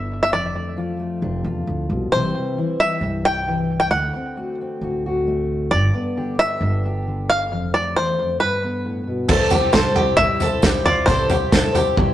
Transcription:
Already playing: upright bass G1, steel-string acoustic guitar G2 D3 B3 D4 E4, five-string banjo E5
0.23 five-string banjo E5
0.32 upright bass F1, steel-string acoustic guitar F2, five-string banjo D5
0.54 steel-string acoustic guitar A3
0.77 steel-string acoustic guitar F3 F4
0.99 steel-string acoustic guitar A3
1.21 upright bass F1, steel-string acoustic guitar C3 D4
1.44 upright bass E2, steel-string acoustic guitar F4
1.67 upright bass D2, steel-string acoustic guitar A2
1.90 upright bass C2, steel-string acoustic guitar B2
2.12 upright bass C2, steel-string acoustic guitar C3 E3 G3 C4 E4, five-string banjo C5
2.36 steel-string acoustic guitar G3
2.58 steel-string acoustic guitar E3 E4
2.80 steel-string acoustic guitar G3, five-string banjo E5
3.01 upright bass C2, steel-string acoustic guitar G2 C4
3.25 steel-string acoustic guitar E4, five-string banjo G5
3.47 steel-string acoustic guitar E3
3.80 five-string banjo G5
3.91 upright bass D2, steel-string acoustic guitar D3, five-string banjo F#5
4.16 steel-string acoustic guitar C4
4.37 steel-string acoustic guitar A3 F#4
4.61 steel-string acoustic guitar C4
4.81 upright bass D2, steel-string acoustic guitar A2 F#4
5.06 steel-string acoustic guitar F#4
5.27 steel-string acoustic guitar A3
5.71 upright bass G1, steel-string acoustic guitar G2, five-string banjo D5
5.94 steel-string acoustic guitar B3
6.17 steel-string acoustic guitar D3 G4
6.39 five-string banjo E5
6.61 upright bass G1, steel-string acoustic guitar G2 D4
6.86 steel-string acoustic guitar G4
7.07 steel-string acoustic guitar D3
7.30 five-string banjo F5
7.49 upright bass F1, steel-string acoustic guitar F2
7.74 steel-string acoustic guitar A3, five-string banjo D5
7.96 steel-string acoustic guitar E2, five-string banjo C5
8.19 steel-string acoustic guitar F2
8.40 steel-string acoustic guitar G2, five-string banjo B4
8.64 steel-string acoustic guitar B3
8.85 steel-string acoustic guitar A2
9.07 steel-string acoustic guitar B2
9.29 upright bass C2, twelve-string acoustic guitar C3 E3 G3 C4 E4 C5, mandolin A4, kick, floor tom, crash, tambourine
9.50 twelve-string acoustic guitar G3 C4 E4 C5, mandolin G4, floor tom, tambourine
9.73 upright bass C2, twelve-string acoustic guitar E4, mandolin A4, five-string banjo C5, kick, snare, floor tom, tambourine
9.95 twelve-string acoustic guitar G3 C4 E4 C5, mandolin G4, floor tom
10.17 upright bass C2, twelve-string acoustic guitar G3 C4 E4 C5, five-string banjo E5, kick, floor tom
10.40 twelve-string acoustic guitar G3 C4 E4 C5, mandolin A4, floor tom, tambourine
10.62 upright bass C2, twelve-string acoustic guitar C3 E3 G3 C4 E4 C5, mandolin G4, kick, snare, floor tom, tambourine
10.86 twelve-string acoustic guitar G3 C4 E4, mandolin F4, five-string banjo D5, floor tom
11.06 upright bass C2, twelve-string acoustic guitar C3 E3 G3 C4 E4 C5, mandolin A4, five-string banjo C5, kick, floor tom, tambourine
11.29 twelve-string acoustic guitar G3 C4 E4 C5, mandolin G4, floor tom, tambourine
11.52 upright bass C2, twelve-string acoustic guitar C3 E3 G3 C4 E4 C5, mandolin A4, kick, snare, floor tom, tambourine
11.73 twelve-string acoustic guitar G3 C4 E4 C5, mandolin G4, floor tom, tambourine
11.96 upright bass C2, twelve-string acoustic guitar G3 C4 E4 C5, kick, floor tom

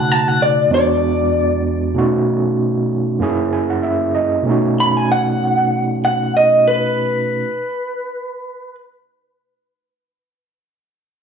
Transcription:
Already playing: tine electric piano B2 C#3 A3 D#4 F#4, clean electric guitar F#5
0.12 clean electric guitar A5
0.28 clean electric guitar F#5
0.42 clean electric guitar D5
0.70 tine electric piano E2 G#3 B3 D4 F#4
0.74 clean electric guitar D5
1.94 tine electric piano B2 A3 C#4 D#4 F#4
3.19 tine electric piano F#2 A#3 C#4 E4 G#4
3.53 tine electric piano G#5
3.70 tine electric piano F#5
3.83 tine electric piano E5
4.15 tine electric piano D#5
4.43 tine electric piano B2 A3 C#4
4.49 tine electric piano D#4 F#4
4.80 clean electric guitar B5
4.97 clean electric guitar G#5
5.12 clean electric guitar F#5
6.05 clean electric guitar F#5
6.37 clean electric guitar D#5
6.68 clean electric guitar B4

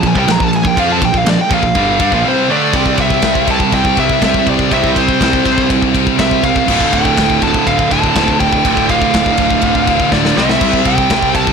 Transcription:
0.03 picked electric bass A#1, distorted electric guitar A#2 F3, lead electric guitar G#5, kick, ride
0.15 picked electric bass C2, distorted electric guitar C3 G3, lead electric guitar G5, kick
0.28 picked electric bass A#1, distorted electric guitar A#2 F3, lead electric guitar A#5, snare, ride
0.40 picked electric bass A#1, distorted electric guitar A#2 F3, lead electric guitar A5, kick
0.53 lead electric guitar G#5, ride
0.65 picked electric bass A#1, distorted electric guitar A#2 F3, lead electric guitar G5, kick
0.77 picked electric bass F2, distorted electric guitar F3 C4 F4, lead electric guitar F5, kick, ride
0.92 lead electric guitar A5
1.02 picked electric bass A#1, distorted electric guitar A#2 F3, lead electric guitar G5, kick, ride
1.14 picked electric bass A#1, distorted electric guitar A#2 F3, lead electric guitar F5, kick
1.26 picked electric bass A#1, distorted electric guitar A#2 F3, lead electric guitar D5, snare, ride
1.40 lead electric guitar G5, muted picked electric bass stroke, muted distorted electric guitar stroke
1.51 picked electric bass A#1, distorted electric guitar A#2 F3, lead electric guitar F5, kick, ride
1.63 picked electric bass A#1, distorted electric guitar A#2 F3, kick
1.75 picked electric bass G1, distorted electric guitar G2 D3 G3, kick, ride
2.00 picked electric bass G2, distorted electric guitar G3 D4, kick, ride
2.12 picked electric bass A#1, distorted electric guitar A#2 F3, kick
2.25 distorted electric guitar C3 G3 C4, lead electric guitar C5
2.49 distorted electric guitar D3 A3 D4, lead electric guitar D5
2.73 picked electric bass C2, distorted electric guitar C3 G3 C4 E4 G4 C5, kick, ride
2.86 kick
2.98 picked electric bass C2, lead electric guitar E5, kick, ride
3.10 kick
3.22 picked electric bass C2, kick, snare, ride
3.35 kick
3.47 distorted electric guitar C3 G3 C4 E4 G4 C5, lead electric guitar A5, kick, ride
3.60 kick
3.72 picked electric bass C2, lead electric guitar G5, kick, ride
3.85 kick
3.95 picked electric bass C2, distorted electric guitar C3 G3 C4, kick, ride
3.99 lead electric guitar E5
4.10 kick
4.21 picked electric bass C2, distorted electric guitar C3 G3 C4 E4 G4 C5, lead electric guitar E5, kick, snare, ride
4.34 kick
4.47 picked electric bass C2, lead electric guitar D5, kick, ride
4.59 kick
4.70 picked electric bass C2, distorted electric guitar C3 G3 C4 E4 G4 C5, lead electric guitar E5, kick, ride
4.84 kick
4.96 lead electric guitar C5, kick, ride
5.09 kick
5.21 picked electric bass C2, kick, snare, ride
5.33 kick
5.45 picked electric bass C2, distorted electric guitar C3 G3 C4 E4 G4 C5, kick, ride
5.58 kick
5.70 picked electric bass C2, kick, ride
5.82 kick
5.93 distorted electric guitar C3 G3 C4, kick, ride
6.07 kick
6.19 picked electric bass C2, distorted electric guitar C3 G3 C4 E4 G4 C5, lead electric guitar E5, kick, snare, ride
6.31 kick
6.43 picked electric bass C2, lead electric guitar F5, kick, ride
6.56 kick
6.68 picked electric bass D1, distorted electric guitar D2 A2 D3 A3, kick, crash
6.72 distorted electric guitar F4
6.81 kick
6.93 picked electric bass D1, lead electric guitar G5, kick, ride
7.05 kick
7.17 picked electric bass D1, kick, snare, ride
7.30 kick
7.42 distorted electric guitar D2 A2 D3 A3 F4, lead electric guitar A5, kick, ride
7.54 kick
7.67 picked electric bass D1, lead electric guitar F5, kick, ride
7.79 kick
7.91 picked electric bass D1, distorted electric guitar D2 A2 D3, lead electric guitar A5, kick, ride
8.04 kick
8.15 picked electric bass D1, distorted electric guitar D2 A2 D3 A3 F4, kick, snare, ride
8.28 kick
8.40 picked electric bass D1, lead electric guitar G5, kick, ride
8.53 kick
8.64 picked electric bass D1, distorted electric guitar D2 A2 D3 A3 F4, kick, ride
8.77 kick
8.89 lead electric guitar F5, kick, ride
9.02 kick
9.14 picked electric bass D1, kick, snare, ride
9.26 kick
9.38 picked electric bass D1, distorted electric guitar D2 A2 D3 A3 F4, kick, ride
9.50 kick
9.62 picked electric bass D1, kick, ride
9.75 kick
9.87 distorted electric guitar A2 D3, kick, ride
9.91 distorted electric guitar D2
10.00 kick
10.11 picked electric bass D1, distorted electric guitar D2 A2 D3 A3 F4, lead electric guitar D5, kick, snare
10.25 snare
10.36 picked electric bass C2, distorted electric guitar C3 G3 C4 E4 G4 C5, lead electric guitar E5, snare
10.49 snare
10.61 picked electric bass C2, kick, crash
10.73 kick
10.85 picked electric bass C2, lead electric guitar G5, kick, ride
10.98 kick
11.09 picked electric bass C2, distorted electric guitar C3 G3 C4 E4 G4 C5, kick, snare, ride
11.22 kick
11.35 lead electric guitar A5, kick, ride
11.47 kick

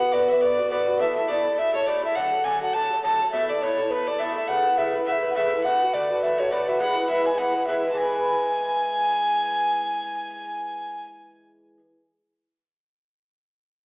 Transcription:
Already playing: fiddle F#5, flute F#5
0.00 bouzouki B3 F#4 B4
0.12 bouzouki D3 B3 F#4 B4, fiddle D5, flute D5
0.28 bouzouki B3 F#4 B4, fiddle E5, flute E5
0.41 bouzouki D3 B3 F#4 B4, fiddle D5, flute D5
0.57 bouzouki B3 F#4 B4
0.70 bouzouki D3 B3 F#4 B4, fiddle D5, flute D5
0.86 bouzouki B3 F#4 B4
0.99 bouzouki B2 A3 E4 A4, fiddle E5, flute E5
1.15 bouzouki A3 E4 A4, fiddle E5
1.28 bouzouki B2 A3 E4 A4, fiddle D5, flute D5
1.44 bouzouki A3 E4 A4
1.57 bouzouki B2 A3 E4 A4, fiddle E5, flute E5
1.73 bouzouki A3 E4 A4, fiddle C#5, flute C#5
1.86 bouzouki B2 A3 E4 A4, fiddle D5, flute D5
2.03 bouzouki A3 E4 A4, fiddle E5, flute E5
2.16 bouzouki D3 F#3 A3 A4, fiddle F#5, flute F#5
2.32 bouzouki F#3 A3 A4
2.44 bouzouki D3 F#3 A3 A4, fiddle G#5, flute G#5
2.61 bouzouki F#3 A3 A4, fiddle F#5, flute F#5
2.74 bouzouki D3 F#3 A3 A4, fiddle A5, flute A5
2.91 bouzouki F#3 A3 A4
3.03 bouzouki D3 F#3 A3 A4, flute A5, fiddle A5
3.20 bouzouki F#3 A3 A4
3.32 bouzouki B2 A3 E4 A4, flute E5, fiddle E5
3.49 bouzouki A3 E4 A4, flute D5, fiddle D5
3.61 bouzouki B2 A3 E4 A4, flute C#5, fiddle C#5
3.78 bouzouki A3 E4 A4
3.90 bouzouki B2 A3 E4 A4, flute B4, fiddle B4
4.07 bouzouki A3 E4 A4, fiddle D5, flute D5
4.19 bouzouki B2 A3 E4 A4, fiddle E5, flute E5
4.35 bouzouki A3 E4 A4, fiddle E5, flute E5
4.48 bouzouki C#3 A3 E4 B4, fiddle F#5, flute F#5
4.65 bouzouki A3 E4 B4
4.77 bouzouki C#3 A3 E4 B4, fiddle E5, flute E5
4.94 bouzouki A3 E4 B4
5.05 bouzouki C#3 A3 E4 B4, fiddle E5, flute F#5
5.12 flute E5
5.23 bouzouki A3 E4 B4
5.30 flute F#5
5.35 bouzouki C#3 A3 E4 B4, fiddle E5, flute E5
5.52 bouzouki A3 E4 B4
5.64 bouzouki D3 A3 F#4 B4, fiddle F#5, flute F#5
5.81 bouzouki A3 F#4 B4
5.93 bouzouki D3 A3 F#4 B4, fiddle D5, flute D5
6.09 bouzouki A3 F#4 B4
6.22 bouzouki D3 A3 F#4 B4, fiddle E5, flute E5
6.38 bouzouki A3 F#4 B4, fiddle C#5, flute C#5
6.51 bouzouki D3 A3 F#4 B4, flute D5, fiddle D5
6.67 bouzouki A3 F#4 B4, fiddle E5, flute E5
6.79 bouzouki E3 G#3 E4 B4, fiddle F#5, flute F#5
6.96 bouzouki G#3 E4 B4
7.09 bouzouki E3 G#3 E4 B4, flute E5, fiddle E5
7.25 bouzouki G#3 E4 B4, flute G#5, fiddle G#5
7.37 bouzouki E3 G#3 E4 B4, flute F#5, fiddle F#5
7.54 bouzouki G#3 E4 B4
7.66 bouzouki E3 G#3 E4 B4, flute E5, fiddle E5
7.83 bouzouki G#3 E4 B4
7.91 bouzouki E3, fiddle A5
7.96 bouzouki G#3 E4, flute G#5, fiddle G#5
8.03 bouzouki B4

